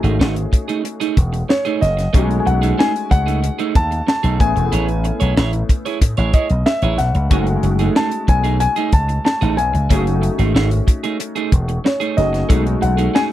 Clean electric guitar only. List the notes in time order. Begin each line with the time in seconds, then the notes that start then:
0.03 A3 D#4 G#4
0.19 A3 D#4 G#4
0.35 muted clean electric guitar stroke
0.52 muted clean electric guitar stroke
0.68 A3 D#4 G#4
0.84 muted clean electric guitar stroke
1.00 A3 D#4 G#4
1.33 muted clean electric guitar stroke
1.49 muted clean electric guitar stroke
1.65 A3 D#4 G#4
1.81 muted clean electric guitar stroke
1.97 muted clean electric guitar stroke
2.13 A3 D#4 G#4
2.29 muted clean electric guitar stroke
2.46 muted clean electric guitar stroke
2.62 A3 D#4 G#4
2.78 A3 D#4 G#4
2.94 muted clean electric guitar stroke
3.10 muted clean electric guitar stroke
3.26 A3 D#4 G#4
3.42 muted clean electric guitar stroke
3.59 A3 D#4 G#4
3.91 muted clean electric guitar stroke
4.07 muted clean electric guitar stroke
4.23 A3 D#4 G#4
4.39 muted clean electric guitar stroke
4.56 muted clean electric guitar stroke
4.72 E4 G#4 C#5
4.88 muted clean electric guitar stroke
5.04 muted clean electric guitar stroke
5.20 E4 G#4 C#5
5.37 E4 G#4 C#5
5.53 muted clean electric guitar stroke
5.69 muted clean electric guitar stroke
5.86 E4 G#4 C#5
6.01 muted clean electric guitar stroke
6.18 E4 G#4 C#5
6.34 E4 G#4 C#5
6.50 muted clean electric guitar stroke
6.66 muted clean electric guitar stroke
6.83 E4 G#4 C#5
6.99 muted clean electric guitar stroke
7.15 muted clean electric guitar stroke
7.31 A3 D#4 G#4
7.47 muted clean electric guitar stroke
7.64 muted clean electric guitar stroke
7.79 A3 D#4 G#4
7.95 A3 D#4 G#4
8.11 muted clean electric guitar stroke
8.28 muted clean electric guitar stroke
8.44 A3 D#4 G#4
8.60 muted clean electric guitar stroke
8.76 A3 D#4 G#4
9.09 muted clean electric guitar stroke
9.25 muted clean electric guitar stroke
9.41 A3 D#4 G#4
9.58 muted clean electric guitar stroke
9.74 muted clean electric guitar stroke
9.90 A3 D#4 G#4
10.06 muted clean electric guitar stroke
10.22 muted clean electric guitar stroke
10.39 A3 D#4 G#4
10.55 A3 D#4 G#4
10.71 muted clean electric guitar stroke
10.87 muted clean electric guitar stroke
11.03 A3 D#4 G#4
11.20 muted clean electric guitar stroke
11.36 A3 D#4 G#4
11.68 muted clean electric guitar stroke
11.84 muted clean electric guitar stroke
12.00 A3 D#4 G#4
12.17 muted clean electric guitar stroke
12.33 muted clean electric guitar stroke
12.49 A3 D#4 G#4
12.65 muted clean electric guitar stroke
12.81 muted clean electric guitar stroke
12.97 A3 D#4 G#4
13.14 A3 D#4 G#4